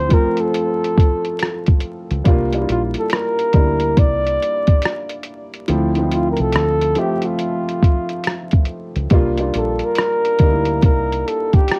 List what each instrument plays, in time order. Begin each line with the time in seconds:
Already playing: upright piano F3 A3 C4 E4, flugelhorn C5
0.09 upright piano F3 A3 C4 F4, kick, closed hi-hat
0.13 flugelhorn A#4
0.37 flugelhorn A4, closed hi-hat
0.54 closed hi-hat
0.84 closed hi-hat
0.98 kick, closed hi-hat
1.25 closed hi-hat
1.39 cross-stick, closed hi-hat
1.66 kick, closed hi-hat
1.80 closed hi-hat
2.11 fingered electric bass C#2, closed hi-hat
2.24 fingered electric bass C2, upright piano G3 A#3 D4 F4, kick, closed hi-hat
2.52 upright piano G3 A#3 D4 E4, closed hi-hat
2.62 upright piano F4
2.69 fingered electric bass A#1, flugelhorn F4, closed hi-hat
2.94 closed hi-hat
2.99 flugelhorn A4
3.10 flugelhorn A#4, cross-stick, closed hi-hat
3.39 closed hi-hat
3.53 fingered electric bass D2, upright piano G3 A#3 D4 E4, kick, closed hi-hat
3.80 closed hi-hat
3.97 fingered electric bass C2, flugelhorn D5, kick, closed hi-hat
4.26 closed hi-hat
4.42 closed hi-hat
4.67 kick, closed hi-hat
4.82 cross-stick, closed hi-hat
5.09 closed hi-hat
5.23 closed hi-hat
5.54 closed hi-hat
5.68 fingered electric bass D2, upright piano F3 A3 C4 E4, closed hi-hat
5.95 upright piano F3 A3 C4, closed hi-hat
6.00 upright piano D#4
6.06 upright piano E4
6.11 flugelhorn F4, closed hi-hat
6.31 flugelhorn A#4
6.37 fingered electric bass C2, flugelhorn A4, closed hi-hat
6.52 fingered electric bass D2, cross-stick, closed hi-hat
6.81 closed hi-hat
6.95 upright piano F3 A3 C4 E5, flugelhorn G4, closed hi-hat
7.22 flugelhorn F4, closed hi-hat
7.39 closed hi-hat
7.69 closed hi-hat
7.83 kick, closed hi-hat
8.09 closed hi-hat
8.24 cross-stick, closed hi-hat
8.51 kick, closed hi-hat
8.65 closed hi-hat
8.96 fingered electric bass C#2, closed hi-hat
9.10 fingered electric bass C2, upright piano G3 A#3 D4 F4, kick, closed hi-hat
9.38 upright piano G3 A#3 D4 F4, closed hi-hat
9.54 fingered electric bass A#1, flugelhorn A4, closed hi-hat
9.79 closed hi-hat
9.85 flugelhorn A#4
9.95 cross-stick, closed hi-hat
10.25 closed hi-hat
10.39 fingered electric bass D2, upright piano G3 A#3 D4, kick, closed hi-hat
10.43 upright piano D#4
10.49 upright piano E4
10.65 closed hi-hat
10.82 fingered electric bass C2, flugelhorn A#4, kick, closed hi-hat
11.12 closed hi-hat
11.27 flugelhorn A4, closed hi-hat
11.53 flugelhorn G4, kick, closed hi-hat
11.68 cross-stick, closed hi-hat